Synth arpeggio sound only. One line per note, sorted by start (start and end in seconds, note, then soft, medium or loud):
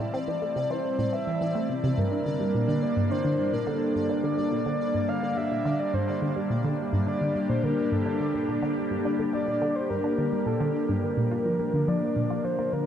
0.14 0.22 C4 loud
0.28 0.36 E3 medium
0.42 0.54 A3 medium
0.56 0.64 C3 medium
0.70 0.78 E3 loud
0.99 1.04 A2 medium
1.13 1.18 C4 medium
1.27 1.39 E3 medium
1.41 1.53 E3 medium
1.55 1.68 A3 medium
1.69 1.74 C3 medium
1.84 1.88 C3 loud
1.98 2.03 G2 medium
2.12 2.20 D4 medium
2.26 2.34 D3 medium
2.40 2.52 G3 medium
2.54 2.62 A#2 medium
2.68 2.77 D3 loud
2.97 3.02 G2 medium
3.10 3.19 D4 medium
3.25 3.33 D3 medium
3.39 3.51 G3 medium
3.53 3.61 A#2 medium
3.67 3.76 D3 loud
3.96 4.01 G2 medium
4.10 4.18 D4 medium
4.24 4.32 D3 medium
4.38 4.50 G3 medium
4.52 4.60 A#2 medium
4.66 4.74 D3 loud
4.95 5.00 G2 medium
5.09 5.17 D4 medium
5.23 5.31 D3 medium
5.37 5.50 G3 medium
5.51 5.60 A#2 medium
5.65 5.74 D3 loud
5.94 5.99 G2 medium
6.08 6.16 D4 medium
6.22 6.30 D3 medium
6.36 6.49 G3 medium
6.50 6.59 A#2 medium
6.64 6.73 D3 loud
6.93 6.98 G2 medium
7.07 7.15 D4 medium
7.21 7.29 D3 medium
7.35 7.48 G3 medium
7.49 7.58 A#2 medium
7.64 7.72 D3 loud
7.92 7.97 G2 medium
8.06 8.14 D4 medium
8.20 8.28 D3 medium
8.34 8.47 G3 medium
8.49 8.57 A#2 medium
8.63 8.71 D3 loud
8.91 8.96 G2 medium
9.05 9.13 D4 medium
9.19 9.28 D3 medium
9.33 9.46 G3 medium
9.48 9.56 A#2 medium
9.62 9.70 D3 loud
9.90 9.95 G2 medium
10.04 10.12 D4 medium
10.18 10.27 D3 medium
10.32 10.45 G3 medium
10.46 10.55 A#2 medium
10.61 10.69 D3 loud
10.89 10.94 G2 medium
11.17 11.22 A#2 medium
11.31 11.40 F4 medium
11.46 11.54 F3 medium
11.60 11.72 A#3 medium
11.74 11.82 D3 medium
11.88 11.96 F3 loud
12.16 12.21 A#2 medium
12.30 12.39 F4 medium
12.45 12.53 F3 medium
12.59 12.71 A#3 medium
12.73 12.81 D3 medium